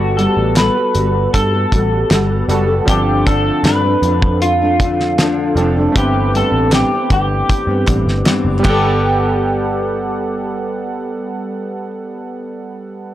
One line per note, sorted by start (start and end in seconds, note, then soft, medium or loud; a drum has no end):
0.00 0.26 G1 medium
0.00 0.17 G3 medium
0.00 2.44 G3 medium
0.00 0.17 B3 medium
0.00 2.45 B3 medium
0.00 0.16 F#4 medium
0.00 0.19 F#4 medium
0.00 2.45 F#4 medium
0.00 0.19 A4 medium
0.00 2.46 A4 medium
0.17 0.55 G3 medium
0.17 0.56 B3 medium
0.17 0.56 F#4 medium
0.17 0.53 A4 medium
0.17 0.57 A4 medium
0.17 closed hi-hat medium
0.37 0.68 A1 medium
0.56 0.76 G3 medium
0.56 0.76 B3 medium
0.56 0.76 F#4 medium
0.56 0.74 A4 medium
0.56 1.30 B4 medium
0.56 snare loud
0.56 clap medium
0.56 closed hi-hat loud
0.75 0.95 B3 soft
0.75 0.96 F#4 medium
0.75 0.95 A4 medium
0.95 1.26 G1 loud
0.95 1.53 G3 medium
0.95 1.53 B3 medium
0.95 1.53 F#4 medium
0.95 1.51 A4 medium
0.95 closed hi-hat medium
1.34 1.65 G2 medium
1.34 2.45 A4 medium
1.34 kick medium
1.34 closed hi-hat medium
1.52 1.72 B3 soft
1.52 1.72 F#4 soft
1.52 1.72 A4 soft
1.72 2.03 A1 medium
1.72 2.09 G3 medium
1.72 2.10 B3 medium
1.72 2.10 F#4 medium
1.72 2.11 A4 medium
1.72 kick medium
1.72 closed hi-hat medium
2.10 2.41 G1 medium
2.10 2.47 G3 medium
2.10 2.49 B3 medium
2.10 2.50 F#4 medium
2.10 2.50 A4 loud
2.10 snare loud
2.10 clap medium
2.10 closed hi-hat medium
2.48 2.79 F#1 loud
2.48 2.68 G3 medium
2.48 2.87 G3 medium
2.48 2.88 B3 medium
2.48 2.69 B3 medium
2.48 2.88 F#4 soft
2.48 2.68 F#4 medium
2.48 2.88 A4 medium
2.48 2.66 A4 medium
2.48 closed hi-hat medium
2.67 2.88 B3 soft
2.67 2.88 F#4 soft
2.67 2.87 A4 soft
2.86 3.49 G1 loud
2.86 3.24 D3 medium
2.86 5.52 F3 medium
2.86 3.25 F3 medium
2.86 3.26 A3 medium
2.86 5.53 C4 medium
2.86 3.26 D4 medium
2.86 5.54 D4 medium
2.86 3.27 G4 medium
2.86 kick loud
2.86 closed hi-hat loud
2.91 5.54 A4 medium
3.25 3.62 D3 medium
3.25 3.63 F3 medium
3.25 3.63 A3 medium
3.25 3.65 D4 medium
3.25 3.65 A4 medium
3.25 kick medium
3.25 closed hi-hat medium
3.64 3.95 G2 loud
3.64 3.83 D3 medium
3.64 3.84 F3 medium
3.64 3.84 A3 medium
3.64 3.82 D4 loud
3.64 4.38 B4 medium
3.64 snare loud
3.64 clap medium
3.64 closed hi-hat medium
3.84 4.02 F3 soft
3.84 4.03 A3 soft
3.84 4.03 D4 medium
4.02 5.53 F2 loud
4.02 4.61 D3 medium
4.02 4.61 F3 medium
4.02 4.61 A3 medium
4.02 4.60 D4 medium
4.02 closed hi-hat medium
4.22 kick medium
4.42 5.53 F4 medium
4.42 closed hi-hat medium
4.61 4.80 F3 soft
4.61 4.81 A3 soft
4.61 4.80 D4 medium
4.80 5.17 D3 soft
4.80 5.19 F3 medium
4.80 5.19 A3 medium
4.80 5.20 D4 medium
4.80 kick medium
4.80 closed hi-hat medium
5.00 snare soft
5.19 5.56 D3 medium
5.19 5.57 F3 medium
5.19 5.58 A3 medium
5.19 5.58 D4 loud
5.19 snare loud
5.19 clap medium
5.19 closed hi-hat medium
5.55 5.87 F1 medium
5.55 5.76 D3 medium
5.55 5.94 F3 medium
5.55 5.77 F3 medium
5.55 5.77 A3 medium
5.55 5.93 C4 soft
5.55 5.95 D4 medium
5.55 5.96 A4 medium
5.55 closed hi-hat medium
5.59 5.75 D4 medium
5.76 5.95 F3 soft
5.76 5.96 A3 soft
5.76 5.95 D4 medium
5.92 6.42 G1 loud
5.92 6.32 G2 medium
5.92 6.33 E3 medium
5.92 8.59 A3 medium
5.92 8.60 C4 medium
5.92 8.61 G4 medium
5.92 kick loud
5.92 closed hi-hat medium
5.96 6.34 B3 medium
5.96 6.35 C4 medium
5.96 6.33 G4 medium
5.96 8.62 B4 medium
6.33 6.69 G2 medium
6.33 6.70 E3 medium
6.33 6.71 B3 medium
6.33 6.72 C4 medium
6.33 6.74 A4 loud
6.33 closed hi-hat medium
6.52 6.83 A1 medium
6.71 6.91 G2 medium
6.71 6.91 E3 medium
6.71 6.91 B3 medium
6.71 6.90 C4 loud
6.71 7.09 G4 medium
6.71 snare loud
6.71 clap medium
6.71 closed hi-hat loud
6.91 7.09 E3 soft
6.91 7.11 B3 medium
6.91 7.10 C4 medium
7.10 7.41 G1 medium
7.10 7.68 G2 medium
7.10 7.68 E3 medium
7.10 7.67 B3 medium
7.10 7.66 C4 medium
7.10 8.62 G4 medium
7.10 kick medium
7.10 closed hi-hat medium
7.50 kick medium
7.50 closed hi-hat medium
7.67 7.83 G2 medium
7.67 7.87 E3 soft
7.67 7.88 B3 soft
7.67 7.87 C4 soft
7.87 8.03 A1 medium
7.87 8.24 G2 soft
7.87 8.25 E3 medium
7.87 8.25 B3 soft
7.87 8.26 C4 medium
7.87 kick medium
7.87 clap medium
7.87 closed hi-hat medium
8.06 8.22 G1 medium
8.06 snare soft
8.25 8.64 G2 medium
8.25 8.59 E3 medium
8.25 8.63 B3 loud
8.25 8.65 C4 loud
8.25 snare loud
8.25 clap medium
8.25 closed hi-hat medium
8.45 8.60 F#1 medium
8.59 11.84 G3 medium
8.59 12.10 G3 medium
8.59 11.88 B3 medium
8.64 11.90 G1 loud
8.64 12.14 B3 medium
8.64 11.90 G4 medium
8.64 11.90 F#5 medium
8.64 kick medium
8.64 clap medium
8.64 crash medium
8.69 11.94 A4 medium
8.69 12.21 A4 medium